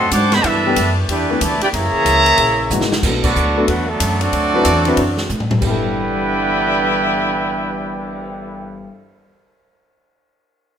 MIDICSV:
0, 0, Header, 1, 9, 480
1, 0, Start_track
1, 0, Key_signature, 1, "major"
1, 0, Tempo, 323799
1, 658, Time_signature, 4, 2, 24, 8
1, 15980, End_track
2, 0, Start_track
2, 0, Title_t, "Trumpet section"
2, 0, Program_c, 0, 61
2, 0, Note_on_c, 0, 69, 86
2, 0, Note_on_c, 0, 75, 81
2, 0, Note_on_c, 0, 78, 71
2, 0, Note_on_c, 0, 84, 94
2, 154, Note_off_c, 0, 75, 0
2, 155, Note_off_c, 0, 84, 0
2, 156, Note_off_c, 0, 78, 0
2, 157, Note_off_c, 0, 69, 0
2, 192, Note_on_c, 0, 81, 100
2, 193, Note_on_c, 0, 78, 89
2, 196, Note_on_c, 0, 86, 102
2, 197, Note_on_c, 0, 72, 89
2, 468, Note_off_c, 0, 81, 0
2, 469, Note_off_c, 0, 78, 0
2, 470, Note_off_c, 0, 86, 0
2, 471, Note_off_c, 0, 72, 0
2, 510, Note_on_c, 0, 72, 100
2, 510, Note_on_c, 0, 75, 101
2, 511, Note_on_c, 0, 67, 91
2, 511, Note_on_c, 0, 83, 115
2, 672, Note_off_c, 0, 72, 0
2, 672, Note_off_c, 0, 75, 0
2, 673, Note_off_c, 0, 67, 0
2, 673, Note_off_c, 0, 83, 0
2, 695, Note_on_c, 0, 76, 107
2, 698, Note_on_c, 0, 62, 98
2, 701, Note_on_c, 0, 69, 102
2, 702, Note_on_c, 0, 71, 99
2, 1460, Note_off_c, 0, 76, 0
2, 1462, Note_off_c, 0, 62, 0
2, 1463, Note_off_c, 0, 69, 0
2, 1464, Note_off_c, 0, 71, 0
2, 1637, Note_on_c, 0, 79, 82
2, 1639, Note_on_c, 0, 71, 85
2, 1641, Note_on_c, 0, 64, 77
2, 1644, Note_on_c, 0, 74, 80
2, 2075, Note_off_c, 0, 79, 0
2, 2076, Note_off_c, 0, 71, 0
2, 2077, Note_off_c, 0, 64, 0
2, 2078, Note_off_c, 0, 74, 0
2, 2116, Note_on_c, 0, 74, 91
2, 2118, Note_on_c, 0, 81, 96
2, 2120, Note_on_c, 0, 71, 81
2, 2124, Note_on_c, 0, 64, 88
2, 2403, Note_off_c, 0, 71, 0
2, 2404, Note_off_c, 0, 74, 0
2, 2410, Note_off_c, 0, 64, 0
2, 2412, Note_off_c, 0, 81, 0
2, 2421, Note_on_c, 0, 71, 79
2, 2422, Note_on_c, 0, 74, 83
2, 2423, Note_on_c, 0, 79, 97
2, 2428, Note_on_c, 0, 64, 81
2, 2496, Note_off_c, 0, 71, 0
2, 2497, Note_off_c, 0, 74, 0
2, 2497, Note_off_c, 0, 79, 0
2, 2502, Note_off_c, 0, 64, 0
2, 2589, Note_on_c, 0, 68, 96
2, 2593, Note_on_c, 0, 76, 89
2, 2596, Note_on_c, 0, 73, 90
2, 2599, Note_on_c, 0, 82, 119
2, 4268, Note_off_c, 0, 68, 0
2, 4270, Note_off_c, 0, 76, 0
2, 4272, Note_off_c, 0, 73, 0
2, 4273, Note_off_c, 0, 82, 0
2, 4799, Note_on_c, 0, 59, 96
2, 4800, Note_on_c, 0, 74, 99
2, 4805, Note_on_c, 0, 69, 84
2, 4808, Note_on_c, 0, 66, 89
2, 5411, Note_off_c, 0, 59, 0
2, 5411, Note_off_c, 0, 74, 0
2, 5414, Note_off_c, 0, 69, 0
2, 5416, Note_off_c, 0, 66, 0
2, 5469, Note_on_c, 0, 71, 91
2, 5471, Note_on_c, 0, 66, 80
2, 5476, Note_on_c, 0, 57, 81
2, 5480, Note_on_c, 0, 62, 78
2, 5753, Note_off_c, 0, 62, 0
2, 5767, Note_on_c, 0, 69, 97
2, 5768, Note_off_c, 0, 66, 0
2, 5768, Note_off_c, 0, 71, 0
2, 5771, Note_off_c, 0, 57, 0
2, 5771, Note_on_c, 0, 62, 83
2, 5774, Note_on_c, 0, 54, 77
2, 5777, Note_on_c, 0, 59, 84
2, 6245, Note_off_c, 0, 69, 0
2, 6247, Note_off_c, 0, 62, 0
2, 6248, Note_off_c, 0, 54, 0
2, 6250, Note_off_c, 0, 59, 0
2, 6262, Note_on_c, 0, 69, 92
2, 6265, Note_on_c, 0, 66, 93
2, 6269, Note_on_c, 0, 74, 108
2, 6270, Note_on_c, 0, 60, 91
2, 7868, Note_off_c, 0, 69, 0
2, 7870, Note_off_c, 0, 66, 0
2, 7872, Note_off_c, 0, 74, 0
2, 7873, Note_off_c, 0, 60, 0
2, 8345, Note_on_c, 0, 71, 92
2, 8347, Note_on_c, 0, 64, 97
2, 8350, Note_on_c, 0, 79, 106
2, 8351, Note_on_c, 0, 74, 90
2, 13131, Note_off_c, 0, 71, 0
2, 13132, Note_off_c, 0, 64, 0
2, 13136, Note_off_c, 0, 74, 0
2, 13136, Note_off_c, 0, 79, 0
2, 15980, End_track
3, 0, Start_track
3, 0, Title_t, "Grand piano"
3, 0, Program_c, 1, 0
3, 979, Note_on_c, 1, 52, 78
3, 981, Note_on_c, 1, 59, 67
3, 986, Note_on_c, 1, 57, 64
3, 986, Note_on_c, 1, 67, 85
3, 991, Note_on_c, 1, 62, 67
3, 1129, Note_off_c, 1, 52, 0
3, 1130, Note_off_c, 1, 59, 0
3, 1132, Note_off_c, 1, 57, 0
3, 1133, Note_off_c, 1, 67, 0
3, 1135, Note_off_c, 1, 62, 0
3, 1925, Note_on_c, 1, 52, 79
3, 1930, Note_on_c, 1, 57, 70
3, 1935, Note_on_c, 1, 59, 65
3, 1938, Note_on_c, 1, 62, 61
3, 1946, Note_on_c, 1, 64, 76
3, 2082, Note_off_c, 1, 52, 0
3, 2085, Note_off_c, 1, 57, 0
3, 2087, Note_off_c, 1, 59, 0
3, 2088, Note_off_c, 1, 62, 0
3, 2092, Note_off_c, 1, 64, 0
3, 4034, Note_on_c, 1, 52, 63
3, 4038, Note_on_c, 1, 56, 58
3, 4039, Note_on_c, 1, 58, 62
3, 4042, Note_on_c, 1, 63, 53
3, 4048, Note_on_c, 1, 66, 72
3, 4300, Note_off_c, 1, 52, 0
3, 4301, Note_off_c, 1, 56, 0
3, 4302, Note_off_c, 1, 58, 0
3, 4304, Note_off_c, 1, 63, 0
3, 4307, Note_off_c, 1, 66, 0
3, 4520, Note_on_c, 1, 54, 64
3, 4521, Note_on_c, 1, 59, 59
3, 4524, Note_on_c, 1, 57, 56
3, 4528, Note_on_c, 1, 62, 54
3, 4532, Note_on_c, 1, 69, 67
3, 4782, Note_off_c, 1, 54, 0
3, 4783, Note_off_c, 1, 59, 0
3, 4784, Note_off_c, 1, 57, 0
3, 4787, Note_off_c, 1, 62, 0
3, 4789, Note_off_c, 1, 69, 0
3, 5283, Note_on_c, 1, 54, 73
3, 5288, Note_on_c, 1, 57, 77
3, 5293, Note_on_c, 1, 59, 65
3, 5296, Note_on_c, 1, 69, 85
3, 5298, Note_on_c, 1, 62, 76
3, 5441, Note_off_c, 1, 54, 0
3, 5444, Note_off_c, 1, 57, 0
3, 5446, Note_off_c, 1, 59, 0
3, 5448, Note_off_c, 1, 69, 0
3, 5449, Note_off_c, 1, 62, 0
3, 6728, Note_on_c, 1, 54, 77
3, 6732, Note_on_c, 1, 60, 72
3, 6733, Note_on_c, 1, 62, 72
3, 6736, Note_on_c, 1, 64, 71
3, 6746, Note_on_c, 1, 71, 90
3, 6884, Note_off_c, 1, 54, 0
3, 6886, Note_off_c, 1, 60, 0
3, 6886, Note_off_c, 1, 62, 0
3, 6888, Note_off_c, 1, 64, 0
3, 6893, Note_off_c, 1, 71, 0
3, 7211, Note_on_c, 1, 54, 83
3, 7219, Note_on_c, 1, 60, 86
3, 7222, Note_on_c, 1, 62, 72
3, 7222, Note_on_c, 1, 64, 71
3, 7228, Note_on_c, 1, 71, 89
3, 7365, Note_off_c, 1, 54, 0
3, 7369, Note_off_c, 1, 60, 0
3, 7371, Note_off_c, 1, 62, 0
3, 7371, Note_off_c, 1, 64, 0
3, 7374, Note_off_c, 1, 71, 0
3, 8267, Note_on_c, 1, 43, 57
3, 8307, Note_on_c, 1, 55, 60
3, 8358, Note_on_c, 1, 59, 55
3, 8398, Note_on_c, 1, 64, 63
3, 8448, Note_on_c, 1, 69, 69
3, 13113, Note_off_c, 1, 43, 0
3, 13152, Note_off_c, 1, 55, 0
3, 13203, Note_off_c, 1, 59, 0
3, 13243, Note_off_c, 1, 64, 0
3, 13293, Note_off_c, 1, 69, 0
3, 15980, End_track
4, 0, Start_track
4, 0, Title_t, "Saxophone section"
4, 0, Program_c, 2, 65
4, 0, Note_on_c, 2, 51, 80
4, 0, Note_on_c, 2, 60, 66
4, 0, Note_on_c, 2, 62, 70
4, 0, Note_on_c, 2, 66, 85
4, 636, Note_off_c, 2, 60, 0
4, 636, Note_off_c, 2, 66, 0
4, 637, Note_off_c, 2, 62, 0
4, 638, Note_off_c, 2, 51, 0
4, 659, Note_on_c, 2, 52, 78
4, 660, Note_on_c, 2, 59, 77
4, 661, Note_on_c, 2, 67, 78
4, 663, Note_on_c, 2, 57, 72
4, 2552, Note_off_c, 2, 52, 0
4, 2560, Note_off_c, 2, 59, 0
4, 2561, Note_off_c, 2, 57, 0
4, 2561, Note_off_c, 2, 67, 0
4, 2569, Note_on_c, 2, 52, 74
4, 2570, Note_on_c, 2, 58, 67
4, 2574, Note_on_c, 2, 64, 89
4, 2576, Note_on_c, 2, 56, 72
4, 4475, Note_off_c, 2, 52, 0
4, 4475, Note_off_c, 2, 58, 0
4, 4477, Note_off_c, 2, 64, 0
4, 4478, Note_off_c, 2, 56, 0
4, 15980, End_track
5, 0, Start_track
5, 0, Title_t, "Trombone section"
5, 0, Program_c, 3, 61
5, 0, Note_on_c, 3, 54, 94
5, 149, Note_off_c, 3, 54, 0
5, 168, Note_on_c, 3, 54, 99
5, 169, Note_on_c, 3, 62, 94
5, 171, Note_on_c, 3, 57, 91
5, 455, Note_off_c, 3, 54, 0
5, 456, Note_off_c, 3, 62, 0
5, 457, Note_off_c, 3, 57, 0
5, 480, Note_on_c, 3, 59, 97
5, 631, Note_off_c, 3, 59, 0
5, 649, Note_on_c, 3, 59, 93
5, 653, Note_on_c, 3, 64, 98
5, 657, Note_on_c, 3, 52, 95
5, 1437, Note_off_c, 3, 59, 0
5, 1439, Note_off_c, 3, 64, 0
5, 1441, Note_off_c, 3, 52, 0
5, 1609, Note_on_c, 3, 64, 96
5, 1613, Note_on_c, 3, 62, 97
5, 1615, Note_on_c, 3, 67, 83
5, 2059, Note_off_c, 3, 64, 0
5, 2062, Note_off_c, 3, 62, 0
5, 2063, Note_off_c, 3, 67, 0
5, 2094, Note_on_c, 3, 57, 82
5, 2098, Note_on_c, 3, 50, 73
5, 2099, Note_on_c, 3, 52, 83
5, 2396, Note_on_c, 3, 64, 77
5, 2396, Note_on_c, 3, 67, 88
5, 2400, Note_off_c, 3, 57, 0
5, 2400, Note_on_c, 3, 62, 79
5, 2402, Note_off_c, 3, 50, 0
5, 2402, Note_off_c, 3, 52, 0
5, 2477, Note_off_c, 3, 64, 0
5, 2477, Note_off_c, 3, 67, 0
5, 2480, Note_off_c, 3, 62, 0
5, 2562, Note_on_c, 3, 49, 94
5, 2569, Note_on_c, 3, 52, 91
5, 2569, Note_on_c, 3, 58, 92
5, 4255, Note_off_c, 3, 49, 0
5, 4258, Note_off_c, 3, 52, 0
5, 4258, Note_off_c, 3, 58, 0
5, 4798, Note_on_c, 3, 57, 84
5, 4802, Note_on_c, 3, 62, 78
5, 4806, Note_on_c, 3, 54, 87
5, 5410, Note_off_c, 3, 57, 0
5, 5412, Note_off_c, 3, 62, 0
5, 5415, Note_off_c, 3, 54, 0
5, 5446, Note_on_c, 3, 54, 84
5, 5450, Note_on_c, 3, 50, 86
5, 5453, Note_on_c, 3, 59, 90
5, 5733, Note_off_c, 3, 50, 0
5, 5739, Note_off_c, 3, 54, 0
5, 5751, Note_on_c, 3, 50, 90
5, 5754, Note_on_c, 3, 57, 83
5, 5757, Note_on_c, 3, 54, 85
5, 5759, Note_off_c, 3, 59, 0
5, 6216, Note_off_c, 3, 54, 0
5, 6218, Note_off_c, 3, 57, 0
5, 6234, Note_on_c, 3, 54, 94
5, 6236, Note_off_c, 3, 50, 0
5, 6236, Note_on_c, 3, 57, 102
5, 6242, Note_on_c, 3, 62, 106
5, 7854, Note_off_c, 3, 54, 0
5, 7855, Note_off_c, 3, 57, 0
5, 7859, Note_off_c, 3, 62, 0
5, 8333, Note_on_c, 3, 59, 99
5, 8341, Note_on_c, 3, 43, 100
5, 8341, Note_on_c, 3, 50, 103
5, 8345, Note_on_c, 3, 52, 97
5, 13119, Note_off_c, 3, 59, 0
5, 13127, Note_off_c, 3, 43, 0
5, 13127, Note_off_c, 3, 50, 0
5, 13131, Note_off_c, 3, 52, 0
5, 15980, End_track
6, 0, Start_track
6, 0, Title_t, "Upright bass"
6, 0, Program_c, 4, 32
6, 0, Note_on_c, 4, 45, 97
6, 159, Note_off_c, 4, 45, 0
6, 171, Note_on_c, 4, 44, 108
6, 640, Note_off_c, 4, 44, 0
6, 646, Note_on_c, 4, 43, 93
6, 1118, Note_off_c, 4, 43, 0
6, 1132, Note_on_c, 4, 42, 99
6, 1595, Note_off_c, 4, 42, 0
6, 1604, Note_on_c, 4, 40, 83
6, 2076, Note_off_c, 4, 40, 0
6, 2092, Note_on_c, 4, 38, 115
6, 2377, Note_off_c, 4, 38, 0
6, 2566, Note_on_c, 4, 42, 93
6, 2854, Note_off_c, 4, 42, 0
6, 3039, Note_on_c, 4, 37, 95
6, 3514, Note_off_c, 4, 37, 0
6, 3522, Note_on_c, 4, 34, 90
6, 3996, Note_off_c, 4, 34, 0
6, 4007, Note_on_c, 4, 32, 106
6, 4478, Note_off_c, 4, 32, 0
6, 4492, Note_on_c, 4, 35, 82
6, 4961, Note_off_c, 4, 35, 0
6, 4977, Note_on_c, 4, 38, 102
6, 5443, Note_off_c, 4, 38, 0
6, 5452, Note_on_c, 4, 40, 84
6, 5921, Note_off_c, 4, 40, 0
6, 5932, Note_on_c, 4, 42, 109
6, 6401, Note_off_c, 4, 42, 0
6, 6411, Note_on_c, 4, 38, 93
6, 6880, Note_off_c, 4, 38, 0
6, 6894, Note_on_c, 4, 40, 102
6, 7356, Note_off_c, 4, 40, 0
6, 7365, Note_on_c, 4, 42, 95
6, 7837, Note_off_c, 4, 42, 0
6, 7846, Note_on_c, 4, 45, 104
6, 8311, Note_off_c, 4, 45, 0
6, 8320, Note_on_c, 4, 31, 91
6, 13106, Note_off_c, 4, 31, 0
6, 15980, End_track
7, 0, Start_track
7, 0, Title_t, "Cymbal swell"
7, 8625, Note_on_c, 9, 59, 41
7, 12063, Note_off_c, 9, 59, 0
7, 15980, End_track
8, 0, Start_track
8, 0, Title_t, "Muted upright bass strokes"
8, 2397, Note_on_c, 9, 29, 42
8, 2545, Note_off_c, 9, 29, 0
8, 2861, Note_on_c, 9, 29, 45
8, 3009, Note_off_c, 9, 29, 0
8, 15980, End_track
9, 0, Start_track
9, 0, Title_t, "Drums"
9, 170, Note_on_c, 9, 44, 77
9, 170, Note_on_c, 9, 51, 84
9, 171, Note_on_c, 9, 36, 23
9, 319, Note_off_c, 9, 36, 0
9, 319, Note_off_c, 9, 44, 0
9, 319, Note_off_c, 9, 51, 0
9, 472, Note_on_c, 9, 51, 57
9, 473, Note_on_c, 9, 38, 60
9, 620, Note_off_c, 9, 51, 0
9, 622, Note_off_c, 9, 38, 0
9, 652, Note_on_c, 9, 36, 26
9, 652, Note_on_c, 9, 51, 74
9, 800, Note_off_c, 9, 36, 0
9, 800, Note_off_c, 9, 51, 0
9, 1131, Note_on_c, 9, 44, 66
9, 1131, Note_on_c, 9, 51, 84
9, 1132, Note_on_c, 9, 36, 31
9, 1279, Note_off_c, 9, 44, 0
9, 1279, Note_off_c, 9, 51, 0
9, 1280, Note_off_c, 9, 36, 0
9, 1612, Note_on_c, 9, 36, 20
9, 1614, Note_on_c, 9, 51, 75
9, 1760, Note_off_c, 9, 36, 0
9, 1762, Note_off_c, 9, 51, 0
9, 2091, Note_on_c, 9, 36, 28
9, 2092, Note_on_c, 9, 44, 68
9, 2092, Note_on_c, 9, 51, 88
9, 2240, Note_off_c, 9, 36, 0
9, 2240, Note_off_c, 9, 44, 0
9, 2240, Note_off_c, 9, 51, 0
9, 2392, Note_on_c, 9, 51, 59
9, 2540, Note_off_c, 9, 51, 0
9, 2570, Note_on_c, 9, 36, 30
9, 2573, Note_on_c, 9, 51, 74
9, 2718, Note_off_c, 9, 36, 0
9, 2721, Note_off_c, 9, 51, 0
9, 3049, Note_on_c, 9, 36, 19
9, 3050, Note_on_c, 9, 44, 70
9, 3050, Note_on_c, 9, 51, 76
9, 3198, Note_off_c, 9, 36, 0
9, 3198, Note_off_c, 9, 44, 0
9, 3198, Note_off_c, 9, 51, 0
9, 3351, Note_on_c, 9, 51, 63
9, 3499, Note_off_c, 9, 51, 0
9, 3523, Note_on_c, 9, 51, 79
9, 3529, Note_on_c, 9, 36, 28
9, 3671, Note_off_c, 9, 51, 0
9, 3678, Note_off_c, 9, 36, 0
9, 4010, Note_on_c, 9, 44, 74
9, 4158, Note_off_c, 9, 44, 0
9, 4169, Note_on_c, 9, 38, 77
9, 4317, Note_off_c, 9, 38, 0
9, 4333, Note_on_c, 9, 38, 92
9, 4481, Note_off_c, 9, 38, 0
9, 4492, Note_on_c, 9, 36, 77
9, 4494, Note_on_c, 9, 38, 39
9, 4494, Note_on_c, 9, 49, 85
9, 4641, Note_off_c, 9, 36, 0
9, 4643, Note_off_c, 9, 38, 0
9, 4643, Note_off_c, 9, 49, 0
9, 4797, Note_on_c, 9, 49, 80
9, 4798, Note_on_c, 9, 36, 70
9, 4945, Note_off_c, 9, 49, 0
9, 4946, Note_off_c, 9, 36, 0
9, 4976, Note_on_c, 9, 44, 53
9, 5124, Note_off_c, 9, 44, 0
9, 5454, Note_on_c, 9, 36, 25
9, 5454, Note_on_c, 9, 51, 72
9, 5602, Note_off_c, 9, 36, 0
9, 5602, Note_off_c, 9, 51, 0
9, 5933, Note_on_c, 9, 44, 57
9, 5933, Note_on_c, 9, 51, 94
9, 5934, Note_on_c, 9, 36, 19
9, 6081, Note_off_c, 9, 44, 0
9, 6081, Note_off_c, 9, 51, 0
9, 6082, Note_off_c, 9, 36, 0
9, 6238, Note_on_c, 9, 51, 60
9, 6386, Note_off_c, 9, 51, 0
9, 6414, Note_on_c, 9, 36, 30
9, 6417, Note_on_c, 9, 51, 67
9, 6562, Note_off_c, 9, 36, 0
9, 6565, Note_off_c, 9, 51, 0
9, 6889, Note_on_c, 9, 44, 58
9, 6889, Note_on_c, 9, 51, 88
9, 6893, Note_on_c, 9, 36, 22
9, 7038, Note_off_c, 9, 44, 0
9, 7038, Note_off_c, 9, 51, 0
9, 7041, Note_off_c, 9, 36, 0
9, 7191, Note_on_c, 9, 51, 55
9, 7340, Note_off_c, 9, 51, 0
9, 7368, Note_on_c, 9, 51, 79
9, 7369, Note_on_c, 9, 36, 19
9, 7516, Note_off_c, 9, 51, 0
9, 7518, Note_off_c, 9, 36, 0
9, 7671, Note_on_c, 9, 38, 58
9, 7819, Note_off_c, 9, 38, 0
9, 7850, Note_on_c, 9, 44, 62
9, 7998, Note_off_c, 9, 44, 0
9, 8008, Note_on_c, 9, 47, 66
9, 8156, Note_off_c, 9, 47, 0
9, 8166, Note_on_c, 9, 47, 102
9, 8314, Note_off_c, 9, 47, 0
9, 8326, Note_on_c, 9, 36, 57
9, 8327, Note_on_c, 9, 49, 67
9, 8474, Note_off_c, 9, 36, 0
9, 8475, Note_off_c, 9, 49, 0
9, 15980, End_track
0, 0, End_of_file